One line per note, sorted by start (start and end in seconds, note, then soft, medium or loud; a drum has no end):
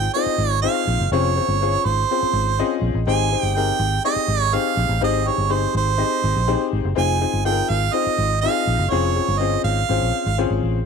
0.00 0.13 G5 loud
0.14 0.53 C4 medium
0.14 0.54 D#4 medium
0.14 0.54 F4 medium
0.14 0.54 G#4 medium
0.14 0.54 C5 medium
0.14 0.59 D#5 loud
0.26 muted fingered electric bass stroke soft
0.38 0.66 G#1 medium
0.62 1.02 C4 medium
0.62 1.02 D#4 medium
0.62 1.02 F4 medium
0.62 1.02 G#4 medium
0.62 1.02 C5 medium
0.62 1.08 F5 loud
0.87 0.96 A#1 medium
1.00 1.09 F#1 medium
1.11 1.39 F1 loud
1.11 1.31 C4 loud
1.11 1.31 C#4 medium
1.11 1.31 F4 medium
1.11 1.32 G#4 medium
1.11 1.32 C5 loud
1.11 1.87 C#5 medium
1.36 1.55 C4 medium
1.36 1.56 C#4 medium
1.36 1.56 F4 medium
1.36 1.56 G#4 medium
1.36 1.56 C5 medium
1.48 1.76 G1 medium
1.61 2.00 C#4 medium
1.61 2.00 F4 medium
1.61 2.00 G#4 medium
1.61 2.00 C5 medium
1.61 2.00 C#5 medium
1.85 2.03 G#1 medium
1.85 2.83 C5 medium
2.11 2.49 C4 medium
2.11 2.49 C#4 medium
2.11 2.49 F4 medium
2.11 2.49 G#4 medium
2.11 2.49 C5 medium
2.23 muted fingered electric bass stroke soft
2.33 2.61 G#1 medium
2.59 2.97 C4 loud
2.59 2.97 C#4 medium
2.59 2.98 F4 medium
2.59 2.98 G#4 medium
2.59 2.98 D#5 loud
2.82 2.91 A#1 medium
2.94 3.04 A1 medium
3.07 3.34 G#1 loud
3.07 3.26 C4 medium
3.07 3.26 D#4 medium
3.07 3.27 G4 medium
3.07 3.27 G#4 medium
3.07 3.27 C5 loud
3.07 3.42 G#5 loud
3.31 3.50 C4 medium
3.31 3.51 D#4 medium
3.31 3.51 G4 medium
3.31 3.51 G#4 medium
3.31 3.51 C5 medium
3.42 3.70 G1 medium
3.42 3.56 G5 loud
3.56 3.95 C4 medium
3.56 3.95 D#4 medium
3.56 3.95 G4 medium
3.56 3.95 G#4 medium
3.56 3.95 A#4 medium
3.56 4.04 G5 loud
3.79 3.98 G#1 medium
4.04 4.43 C4 medium
4.04 4.43 D#4 medium
4.04 4.43 G4 medium
4.04 4.44 G#4 medium
4.04 4.42 D#5 loud
4.04 4.44 D#5 medium
4.16 muted fingered electric bass stroke soft
4.28 4.56 G#1 medium
4.42 4.56 C#5 loud
4.52 4.92 C4 medium
4.52 4.92 D#4 medium
4.52 4.92 G4 medium
4.52 4.92 G#4 medium
4.52 4.92 C5 medium
4.52 5.02 F5 loud
4.77 4.86 A#1 medium
4.89 4.98 A1 medium
5.01 5.29 G#1 loud
5.01 5.21 C4 loud
5.01 5.21 D#4 medium
5.01 5.21 G4 medium
5.01 5.21 G#4 medium
5.01 5.21 C5 loud
5.01 5.29 D#5 medium
5.25 5.45 C4 medium
5.25 5.45 D#4 medium
5.25 5.45 G4 medium
5.25 5.45 G#4 medium
5.25 5.46 C5 medium
5.25 5.53 C#5 medium
5.38 5.65 G1 medium
5.49 5.88 C4 medium
5.49 5.89 D#4 medium
5.49 5.89 G4 medium
5.49 5.89 G#4 medium
5.49 5.89 C5 medium
5.49 5.76 C5 medium
5.75 6.02 G#1 loud
5.75 6.69 C5 medium
5.97 6.37 C4 medium
5.97 6.37 D#4 medium
5.97 6.38 G4 medium
5.97 6.38 G#4 medium
5.97 6.38 D#5 medium
6.24 6.33 G#1 loud
6.36 6.54 A#1 medium
6.47 6.86 C4 medium
6.47 6.87 D#4 medium
6.47 6.86 G4 medium
6.47 6.87 G#4 medium
6.47 6.87 C5 loud
6.73 6.82 G#1 medium
6.85 6.94 F#1 loud
6.95 7.24 F1 loud
6.95 7.15 C4 loud
6.95 7.15 D#4 medium
6.95 7.16 F4 medium
6.95 7.16 G#4 medium
6.95 7.16 C5 loud
6.95 7.43 G#5 loud
7.20 7.40 C4 medium
7.20 7.40 D#4 medium
7.20 7.40 F4 medium
7.20 7.40 G#4 medium
7.20 7.41 C5 medium
7.33 7.61 G1 medium
7.44 7.83 C4 medium
7.44 7.84 D#4 medium
7.44 7.84 F4 medium
7.44 7.84 G#4 medium
7.44 7.51 A4 medium
7.44 7.71 G5 loud
7.52 7.87 A#4 medium
7.69 7.88 G#1 medium
7.69 7.95 F5 loud
7.92 8.32 C4 medium
7.92 8.32 D#4 medium
7.92 8.32 F4 medium
7.92 8.32 G#4 medium
7.92 8.33 C5 medium
7.92 8.41 D#5 loud
8.06 muted fingered electric bass stroke soft
8.18 8.46 G#1 medium
8.41 8.81 C4 medium
8.41 8.82 D#4 medium
8.41 8.82 F4 medium
8.41 8.49 G4 medium
8.41 8.82 D#5 medium
8.41 8.92 F5 loud
8.50 8.85 G#4 medium
8.67 8.76 A#1 medium
8.79 8.88 F#1 medium
8.90 9.19 F1 loud
8.90 9.10 C4 medium
8.90 9.11 C#4 medium
8.90 9.11 F4 medium
8.90 9.11 G#4 medium
8.90 9.11 C5 loud
8.90 9.40 C#5 medium
9.15 9.35 C4 medium
9.15 9.35 C#4 medium
9.15 9.35 F4 medium
9.15 9.35 G#4 medium
9.15 9.35 C5 medium
9.28 9.55 G1 medium
9.39 9.78 C4 medium
9.39 9.79 C#4 medium
9.39 9.79 F4 medium
9.39 9.79 G#4 medium
9.39 9.79 C5 medium
9.39 9.64 D#5 medium
9.64 9.82 G#1 medium
9.64 10.58 F5 loud
9.89 9.98 G#1 loud
9.89 10.27 C4 medium
9.89 10.28 C#4 medium
9.89 10.28 F4 medium
9.89 10.28 G#4 medium
9.89 10.28 C5 medium
10.01 10.10 A#1 medium
10.26 10.44 G#1 loud
10.38 10.77 C4 medium
10.38 10.77 C#4 medium
10.38 10.77 F4 medium
10.38 10.77 G#4 medium
10.38 10.77 C5 loud
10.50 10.59 G#1 medium
10.63 10.80 A1 medium